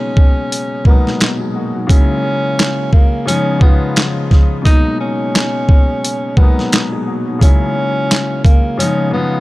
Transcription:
Already playing: B2 F#3 G#3 A#3 C#4 D#4
0.17 kick
0.52 closed hi-hat
0.84 A#2 F#3 G#3 B3 A#4, kick
0.88 B2 D#4
1.07 snare
1.21 snare, clap, closed hi-hat
1.40 B3 G#4
1.56 A#3 F#4
1.75 F#3 D#4
1.87 C#3 F#3 G#3 A#3 C#4, kick, closed hi-hat
1.91 E4
2.59 snare, clap, closed hi-hat
2.93 A#3, kick
3.26 C#3 F3 G#3 B3 C#4, closed hi-hat
3.30 D#4
3.59 C#3 F3 G#3 B3, kick
3.63 F4
3.96 snare, clap, closed hi-hat
4.31 kick, snare
4.62 B2 F#3 G#3 A#3 D#4, kick
4.66 D#4, closed hi-hat
5.00 C#4
5.35 snare, clap, closed hi-hat
5.69 kick
6.05 closed hi-hat
6.36 A#2 F#3 G#3 B3 A#4, kick
6.40 B2 D#4
6.59 snare
6.72 snare, clap, closed hi-hat
6.92 B3 G#4
7.07 A#3 F#4
7.27 F#3 D#4
7.39 C#3 F#3 G#3 A#3 C#4, kick, closed hi-hat
7.43 E4
8.11 snare, clap, closed hi-hat
8.44 A#3, kick, closed hi-hat
8.77 C#3 F3 G#3 B3 C#4, closed hi-hat
8.82 D#4
9.11 C#3 F3 G#3 B3
9.15 F4

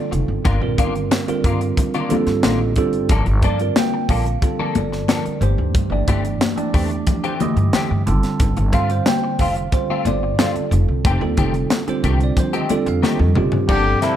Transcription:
Already playing: D3 G3 C4 F4 A4
0.11 F1, muted clean electric guitar stroke, closed hi-hat, muted conga
0.28 G1
0.45 G1 D#3 A#3 D4 F4, kick, closed hi-hat, muted conga
0.61 A#1 D3 G3 C4 F4 A#4, muted clean electric guitar stroke
0.78 G1 D#3 A#3 D4 F4, kick, closed hi-hat, muted conga
0.95 muted clean electric guitar stroke, closed hi-hat
1.11 snare, closed hi-hat, high conga
1.27 D3 G3 C4 F4 A#4, muted upright bass stroke, muted clean electric guitar stroke, closed hi-hat
1.44 G2 D#3 A#3 D4 F4, kick, closed hi-hat
1.61 muted clean electric guitar stroke, closed hi-hat
1.77 muted clean electric guitar stroke, kick, closed hi-hat, muted conga, low conga
1.94 D#3 A#3 D4 F4, closed hi-hat
2.09 D3 G3 C4 F4 A4, muted upright bass stroke, closed hi-hat, high conga, low conga
2.27 G2, muted clean electric guitar stroke, snare, closed hi-hat
2.43 A1 D#3 A#3 D4 F4 D#5, snare, closed hi-hat, high conga
2.61 muted clean electric guitar stroke
2.76 G1 D3 G3 C4 F4 A4 G5, muted clean electric guitar stroke, kick, closed hi-hat, muted conga
2.93 closed hi-hat
3.09 G1 F3 A#3 D4 A4, kick, closed hi-hat, muted conga
3.26 G1, muted clean electric guitar stroke, closed hi-hat
3.42 G2 F3 A#3 D4 A4 D5, kick, closed hi-hat, muted conga
3.59 D3 G3 C4 F4 A#4, muted clean electric guitar stroke, closed hi-hat
3.76 G5, snare, closed hi-hat, high conga
3.94 muted clean electric guitar stroke
4.09 A#1 F3 A#3 D4 A4 F5, kick, open hi-hat
4.26 muted clean electric guitar stroke, closed hi-hat
4.41 D3 G3 C4 F4 A4, muted clean electric guitar stroke, kick, closed hi-hat, muted conga
4.59 F3 A#3 D4 A4, muted upright bass stroke
4.75 G1 D5, closed hi-hat, high conga
4.92 muted clean electric guitar stroke, snare
5.08 D3 F3 G3 A#3 C4 D4 F4 A4 A#4, snare, closed hi-hat, high conga
5.25 muted upright bass stroke, muted clean electric guitar stroke, closed hi-hat
5.40 G1 E3 A3 D4 G4 C5, muted clean electric guitar stroke, closed hi-hat, muted conga
5.58 D2
5.74 G2, kick, closed hi-hat, muted conga
5.90 G1 E3 A3 D4 G4 D5, muted clean electric guitar stroke
6.08 G1 E3 A3 C4 G4, kick, closed hi-hat, muted conga
6.25 muted clean electric guitar stroke, closed hi-hat
6.41 snare, closed hi-hat, high conga
6.56 E3 A3 D4 G4 D5, muted upright bass stroke, muted clean electric guitar stroke, closed hi-hat
6.74 E2 E3 A3 C4 G4, kick, open hi-hat
6.91 muted clean electric guitar stroke, closed hi-hat
7.07 muted clean electric guitar stroke, kick, closed hi-hat, muted conga, low conga
7.24 E3 A3 C4 G4, closed hi-hat
7.40 D3 E3 A3 G4 D#5, muted upright bass stroke, closed hi-hat, high conga, low conga
7.56 G2, muted clean electric guitar stroke, closed hi-hat
7.73 E3 A3 C4 G4, muted upright bass stroke, snare, closed hi-hat, high conga
7.91 G2, muted clean electric guitar stroke
8.06 G1 D3 G3 C4 F4 A4, muted clean electric guitar stroke, closed hi-hat, muted conga
8.23 snare, closed hi-hat
8.40 G1, kick, closed hi-hat, muted conga
8.57 G1, muted clean electric guitar stroke, closed hi-hat
8.73 G2 A3 C4 F4 F5, kick, closed hi-hat, muted conga
8.89 D3 G3 C4 F4 C5, muted clean electric guitar stroke, closed hi-hat
9.06 G5, snare, closed hi-hat, high conga
9.24 muted clean electric guitar stroke
9.39 F1 A3 C4 F4 F5, kick, open hi-hat
9.56 muted clean electric guitar stroke, closed hi-hat
9.72 D3 G3 C4 F4 C5, muted clean electric guitar stroke, kick, closed hi-hat, muted conga
9.89 A3 C4 F4, muted upright bass stroke
10.05 G1 D5, closed hi-hat, high conga
10.23 muted clean electric guitar stroke
10.38 D3 G3 A3 C4 F4 A4, snare, closed hi-hat, high conga
10.55 muted upright bass stroke, muted clean electric guitar stroke, closed hi-hat
10.71 F1, muted clean electric guitar stroke, closed hi-hat
10.88 C2
11.05 F1 D#3 A3 C4 G4, kick, closed hi-hat, muted conga
11.20 D#2 D3 G3 C4 F4 A4, muted clean electric guitar stroke
11.37 F1 D#3 A3 C4 G4, kick, closed hi-hat, muted conga
11.54 muted clean electric guitar stroke, closed hi-hat
11.70 snare, closed hi-hat, high conga
11.87 D3 G3 C4 F4 C5, muted clean electric guitar stroke, muted upright bass stroke, closed hi-hat
12.04 C2 D#3 A3 C4 G4, kick, closed hi-hat
12.20 D5, muted clean electric guitar stroke, closed hi-hat
12.37 C5, muted clean electric guitar stroke, kick, closed hi-hat, muted conga, low conga
12.53 D#3 A3 C4 G4 D#5, closed hi-hat
12.69 D3 G3 C4 F4 A4 D5, muted upright bass stroke, closed hi-hat, high conga
12.86 F2 F5, muted clean electric guitar stroke, closed hi-hat
13.03 D#3 A3 C4 G4 D#5, muted upright bass stroke, snare, high conga
13.19 F2, muted clean electric guitar stroke, high tom
13.35 F#1 D3 G3 C4 F4 G4, muted clean electric guitar stroke, mid tom, muted conga
13.52 floor tom
13.68 G1 D3 F3 G3 A#3 C4 D4 G4 A4, kick, crash
13.85 muted clean electric guitar stroke
14.01 C3 F3 A#3 D4 E4 A4, muted upright bass stroke, snare, closed hi-hat

